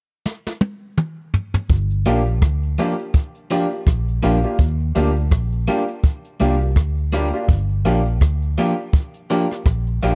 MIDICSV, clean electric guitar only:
0, 0, Header, 1, 2, 480
1, 0, Start_track
1, 0, Tempo, 724288
1, 1121, Time_signature, 4, 2, 24, 8
1, 6727, End_track
2, 0, Start_track
2, 0, Title_t, "Clean electric guitar"
2, 0, Program_c, 0, 27
2, 1364, Note_on_c, 0, 53, 73
2, 1367, Note_on_c, 0, 58, 82
2, 1371, Note_on_c, 0, 62, 85
2, 1372, Note_on_c, 0, 67, 94
2, 1457, Note_off_c, 0, 53, 0
2, 1459, Note_off_c, 0, 58, 0
2, 1461, Note_off_c, 0, 62, 0
2, 1461, Note_off_c, 0, 67, 0
2, 1845, Note_on_c, 0, 53, 77
2, 1849, Note_on_c, 0, 58, 89
2, 1850, Note_on_c, 0, 62, 85
2, 1852, Note_on_c, 0, 67, 89
2, 1938, Note_off_c, 0, 53, 0
2, 1940, Note_off_c, 0, 58, 0
2, 1940, Note_off_c, 0, 62, 0
2, 1941, Note_off_c, 0, 67, 0
2, 2323, Note_on_c, 0, 53, 76
2, 2326, Note_on_c, 0, 58, 82
2, 2328, Note_on_c, 0, 62, 84
2, 2330, Note_on_c, 0, 67, 83
2, 2417, Note_off_c, 0, 53, 0
2, 2418, Note_off_c, 0, 58, 0
2, 2419, Note_off_c, 0, 62, 0
2, 2420, Note_off_c, 0, 67, 0
2, 2801, Note_on_c, 0, 53, 81
2, 2804, Note_on_c, 0, 58, 85
2, 2807, Note_on_c, 0, 62, 85
2, 2808, Note_on_c, 0, 67, 86
2, 2896, Note_off_c, 0, 53, 0
2, 2897, Note_off_c, 0, 58, 0
2, 2899, Note_off_c, 0, 62, 0
2, 2899, Note_off_c, 0, 67, 0
2, 3285, Note_on_c, 0, 55, 79
2, 3288, Note_on_c, 0, 58, 83
2, 3290, Note_on_c, 0, 62, 82
2, 3293, Note_on_c, 0, 67, 81
2, 3378, Note_off_c, 0, 55, 0
2, 3379, Note_off_c, 0, 58, 0
2, 3381, Note_off_c, 0, 62, 0
2, 3382, Note_off_c, 0, 67, 0
2, 3762, Note_on_c, 0, 55, 84
2, 3765, Note_on_c, 0, 58, 81
2, 3768, Note_on_c, 0, 62, 88
2, 3770, Note_on_c, 0, 67, 86
2, 3857, Note_off_c, 0, 55, 0
2, 3858, Note_off_c, 0, 58, 0
2, 3860, Note_off_c, 0, 62, 0
2, 3860, Note_off_c, 0, 67, 0
2, 4241, Note_on_c, 0, 55, 75
2, 4245, Note_on_c, 0, 58, 74
2, 4248, Note_on_c, 0, 62, 78
2, 4250, Note_on_c, 0, 67, 82
2, 4336, Note_off_c, 0, 55, 0
2, 4338, Note_off_c, 0, 58, 0
2, 4339, Note_off_c, 0, 62, 0
2, 4340, Note_off_c, 0, 67, 0
2, 4722, Note_on_c, 0, 55, 85
2, 4725, Note_on_c, 0, 58, 81
2, 4728, Note_on_c, 0, 62, 83
2, 4729, Note_on_c, 0, 67, 83
2, 4817, Note_off_c, 0, 55, 0
2, 4818, Note_off_c, 0, 58, 0
2, 4819, Note_off_c, 0, 62, 0
2, 4820, Note_off_c, 0, 67, 0
2, 5205, Note_on_c, 0, 53, 78
2, 5206, Note_on_c, 0, 58, 84
2, 5211, Note_on_c, 0, 62, 86
2, 5212, Note_on_c, 0, 67, 87
2, 5298, Note_off_c, 0, 53, 0
2, 5299, Note_off_c, 0, 58, 0
2, 5301, Note_off_c, 0, 62, 0
2, 5302, Note_off_c, 0, 67, 0
2, 5686, Note_on_c, 0, 53, 76
2, 5690, Note_on_c, 0, 58, 76
2, 5692, Note_on_c, 0, 62, 76
2, 5693, Note_on_c, 0, 67, 80
2, 5779, Note_off_c, 0, 53, 0
2, 5780, Note_off_c, 0, 58, 0
2, 5782, Note_off_c, 0, 62, 0
2, 5782, Note_off_c, 0, 67, 0
2, 6165, Note_on_c, 0, 53, 70
2, 6167, Note_on_c, 0, 58, 70
2, 6170, Note_on_c, 0, 62, 78
2, 6172, Note_on_c, 0, 67, 80
2, 6258, Note_off_c, 0, 53, 0
2, 6259, Note_off_c, 0, 58, 0
2, 6261, Note_off_c, 0, 62, 0
2, 6262, Note_off_c, 0, 67, 0
2, 6647, Note_on_c, 0, 53, 77
2, 6648, Note_on_c, 0, 58, 78
2, 6650, Note_on_c, 0, 62, 81
2, 6653, Note_on_c, 0, 67, 80
2, 6727, Note_off_c, 0, 53, 0
2, 6727, Note_off_c, 0, 58, 0
2, 6727, Note_off_c, 0, 62, 0
2, 6727, Note_off_c, 0, 67, 0
2, 6727, End_track
0, 0, End_of_file